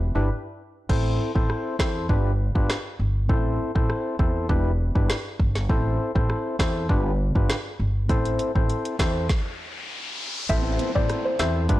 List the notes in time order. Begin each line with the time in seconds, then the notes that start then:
Already playing: E1
0.15 G1 D4 E4 G4 B4
0.89 A1 C4 E4 A4 C5, kick, crash
1.35 A1 C4 E4 A4 C5, kick
1.50 cross-stick
1.79 E2 C4 E4 A4 C5, kick, cross-stick, snare
2.09 G1 D4 F4 G4 B4, kick
2.55 G1 D4 F4 G4 B4, kick
2.70 cross-stick, snare
2.99 G1
3.29 A1 C4 E4 A4 C5, kick
3.75 A1 C4 E4 A4 C5, kick
3.90 cross-stick
4.19 E2 C4 E4 A4 C5, kick
4.49 E1 D4 E4 G4 B4, kick
4.95 G1 D4 E4 G4 B4, kick
5.10 cross-stick, snare
5.40 G1, kick
5.55 snare
5.69 A1 C4 E4 A4 C5, kick
6.15 A1 C4 E4 A4 C5, kick
6.30 cross-stick
6.59 E2 C4 E4 A4 C5, kick, cross-stick, snare
6.89 G1 D4 F4 G4 B4, kick
7.35 G1 D4 F4 G4 B4, kick
7.50 cross-stick, snare
7.80 G1
8.09 A1 C4 E4 A4 C5, kick, closed hi-hat, riser
8.25 closed hi-hat
8.39 closed hi-hat
8.55 A1 C4 E4 A4 C5, kick
8.69 closed hi-hat
8.85 closed hi-hat
8.99 E2 C4 E4 A4 C5, kick, cross-stick, snare, closed hi-hat
9.29 kick, snare
10.49 A1 C4 E4 A4 C5 E5, kick, closed hi-hat, downlifter
10.79 closed hi-hat
10.95 A1 C4 E4 A4 C5 D5, kick
11.10 cross-stick, closed hi-hat
11.25 C5
11.39 E2 C4 E4 A4 C5 E5, cross-stick, snare, closed hi-hat
11.69 G1 D4 F4 G4 B4, kick, closed hi-hat